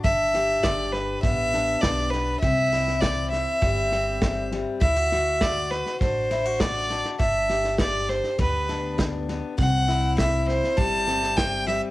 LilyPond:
<<
  \new Staff \with { instrumentName = "Fiddle" } { \time 4/4 \key g \major \tempo 4 = 101 e''4 d''8 b'8 e''4 d''8 b'8 | e''4 d''8 e''2 r8 | e''4 d''8 b'8 c''4 d''8. r16 | e''4 d''8 c''8 b'4 r4 |
fis''4 e''8 c''8 a''4 g''8 e''8 | }
  \new Staff \with { instrumentName = "Steel-string acoustic guitar" } { \time 4/4 \key g \major << { d'8 g'4. b8 d'4 b8 | c'8 e'4. g8 c'4 g8 | e'16 fis'16 fis'4. d'8 e'16 fis'8. d'8 | d'8 g'4. b8 d'4 b8 |
c'8 e'4. g8 c'4 g8 | } \\ { g,4 d4 g,4 d4 | c4 e4 g,4 e4 | d4 a4 a,4 a4 | g,4 d4 g,4 d4 |
c4 e4 g,4 e4 | } >> }
  \new Staff \with { instrumentName = "Upright bass" } { \clef bass \time 4/4 \key g \major g,,4 g,,4 a,,4 b,,4 | c,2 g,,2 | d,2 a,,2 | g,,2 d,2 |
c,2 g,,2 | }
  \new DrumStaff \with { instrumentName = "Drums" } \drummode { \time 4/4 <bd sn>8 sn8 <hhp bd sn>8 sn8 <bd sn>8 sn8 <hhp bd sn>8 sn8 | <bd sn>8 sn16 sn16 <hhp bd sn>8 sn8 <bd sn>8 sn8 <hhp bd sn>8 sn8 | <bd sn>8 sn8 <hhp bd sn>8 sn16 sn16 <bd sn>8 sn8 <hhp bd sn>8 sn16 sn16 | <bd sn>8 sn16 sn16 <hhp bd sn>8 sn16 sn16 <bd sn>8 sn8 <hhp bd sn>8 sn8 |
<bd sn>8 sn8 <hhp bd sn>8 sn16 sn16 <bd sn>8 sn16 sn16 <hhp bd sn>8 sn8 | }
>>